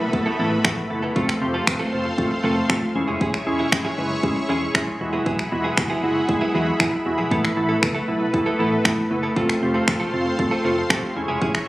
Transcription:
Already playing: A4 B4 E5 B5, downlifter
0.00 muted clean electric guitar stroke
0.13 A3 B3 E4 A4, muted clean electric guitar stroke, kick
0.26 A3 B3 E4 A4
0.39 A1 A3 B3 E4 A4
0.51 muted clean electric guitar stroke
0.64 A1 A3 B3 E4 A4, finger snap, kick
0.77 muted clean electric guitar stroke
0.90 F#1 A3 B3 E4 A4, muted clean electric guitar stroke
1.02 A3 B3 E4 A4
1.15 F1 A3 C4 F4 A4 C5 F5 C6, kick
1.28 finger snap, muted clean electric guitar stroke
1.41 F1 A3 C4 F4 G4, muted clean electric guitar stroke
1.54 A3 C4 F4 A4
1.67 E1 A3 C4 F4 B4, finger snap, muted clean electric guitar stroke, kick
1.79 A3 C4 F4 A4
1.92 F1 A3 C4 F4 C5, muted clean electric guitar stroke
2.05 muted clean electric guitar stroke
2.18 A3 C4 F4 A4, kick
2.31 muted clean electric guitar stroke
2.43 F1 A3 C4 F4 A4
2.57 muted clean electric guitar stroke
2.69 F2 A3 C4 F4 A4, finger snap, kick
2.82 muted clean electric guitar stroke
2.95 E1 G#3 C#4 E4 G#4 C#5 E5 C#6, muted clean electric guitar stroke
3.08 F1 G#3 C#4 E4 G#4
3.20 E1 G#3 C#4 E4 G#4, kick
3.33 finger snap, muted clean electric guitar stroke
3.46 E1 G#3 C#4 E4 G#4, muted clean electric guitar stroke
3.59 G#3 C#4 E4 G#4
3.72 G#1 G#3 C#4 E4 G#4, finger snap, muted clean electric guitar stroke, kick
3.85 G#3 C#4 E4 G#4
3.98 F#1 G#3 C#4 E4 B4
4.11 muted clean electric guitar stroke
4.23 G#3 C#4 E4 G#4, muted clean electric guitar stroke, kick
4.36 muted clean electric guitar stroke
4.49 E1 G#3 C#4 E4 G#4
4.62 muted clean electric guitar stroke
4.74 E1 G#3 C#4 E4 G#4, finger snap, kick
4.88 muted clean electric guitar stroke
5.00 E1 G#3 B3 E4 F#4 G#4 E5 F#5 B5, muted clean electric guitar stroke
5.13 F#3 B3 E4 G#4
5.26 E1 F#3 B3 E4 G#4, kick
5.39 finger snap, muted clean electric guitar stroke
5.51 E1 G#3 B3 E4 F#4, muted clean electric guitar stroke
5.64 F#3 B3 E4 G#4
5.77 F#1 G#3 B3 E4 F#4, finger snap, kick
5.90 F#3 B3 E4 G#4
6.03 F#1 G#3 B3 E4 F#4
6.16 muted clean electric guitar stroke
6.28 G#3 B3 E4 G#4, muted clean electric guitar stroke, kick
6.41 F#3 B3 E4 G#4
6.54 E2 F#3 G#3 B3 E4 F#4 G#4
6.67 muted clean electric guitar stroke
6.79 E2 F#3 G#3 B3 E4 G#4, finger snap, kick
6.92 muted clean electric guitar stroke
7.05 E1 G#3 B3 E4 F#4, muted clean electric guitar stroke
7.18 A#1 F#3 B3 E4 G#4
7.31 A1 A3 B3 E4 A4 B4, kick
7.43 finger snap, muted clean electric guitar stroke
7.56 A1 A3 B3 E4 A4, muted clean electric guitar stroke
7.69 A3 B3 E4 A4
7.82 C#2 A3 B3 E4 A4, finger snap, muted clean electric guitar stroke, kick
7.94 A3 B3 E4 A4
8.08 B1 A3 B3 E4 A4, muted clean electric guitar stroke
8.20 muted clean electric guitar stroke
8.33 A3 B3 E4 A4, muted clean electric guitar stroke, kick
8.46 A3 B3 E4 A4
8.59 A1 A3 B3 E4 A4
8.72 muted clean electric guitar stroke
8.84 A1 A3 B3 E4 A4, finger snap, kick
8.97 muted clean electric guitar stroke
9.10 F#1 A3 B3 E4 B4, muted clean electric guitar stroke
9.23 A3 B3 E4 A4
9.36 F1 A3 C4 F4 A4 C5 F5 C6, kick
9.49 finger snap, muted clean electric guitar stroke
9.62 F1 A3 C4 F4 G4, muted clean electric guitar stroke
9.74 A3 C4 F4 A4
9.87 E1 A3 C4 F4 A4, finger snap, muted clean electric guitar stroke, kick
10.00 A3 C4 F4 A4
10.13 F1 A3 C4 F4 A4, muted clean electric guitar stroke
10.26 muted clean electric guitar stroke
10.38 A3 C4 F4 A4, muted clean electric guitar stroke, kick
10.51 A3 C4 F4 A4
10.64 F1 A3 C4 F4 A4
10.77 muted clean electric guitar stroke
10.89 F2 A3 C4 F4 G4 A4, finger snap, kick
11.03 muted clean electric guitar stroke
11.15 E1 G#3 C#4 E4 G#4 C#5 E5 C#6, muted clean electric guitar stroke
11.28 F1 G#3 C#4 E4 G#4
11.41 E1 G#3 C#4 E4 G#4, kick
11.54 finger snap, muted clean electric guitar stroke

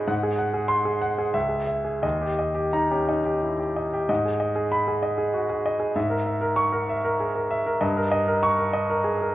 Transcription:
Already playing: G#2 C#4 D#4 F#4 G#4 D#5 B5
0.07 G#2 F#5
0.23 G#4
0.38 F#5
0.54 G#4
0.68 C6
0.85 G#4
1.01 F#5
1.18 G#4
1.34 C#2 E5
1.49 G#4
1.67 E5
1.85 G#4
2.02 D#2 D#5
2.21 G4
2.39 D#5
2.55 G4
2.73 D#4 A#5
2.91 C#4 G4
3.08 D#4 D#5
3.25 G4
3.43 E4
3.59 G4
3.76 D#5
3.93 G4
4.09 G#2 D#5
4.25 G#4
4.40 D#5
4.55 G#4
4.72 B5
4.88 G#4
5.03 D#5
5.18 G#4
5.34 F#4
5.49 G#4
5.66 D#5
5.80 G#4
5.96 G#2 E5
6.10 A#4
6.26 E5
6.41 A#4
6.56 C#6
6.72 A#4
6.89 E5
7.04 A#4
7.20 G#4
7.35 A#4
7.51 E5
7.66 A#4
7.81 G2 D#5
7.97 A#4
8.12 D#5
8.28 A#4
8.43 C#6
8.59 A#4
8.73 D#5
8.90 A#4
9.04 G#4
9.22 A#4

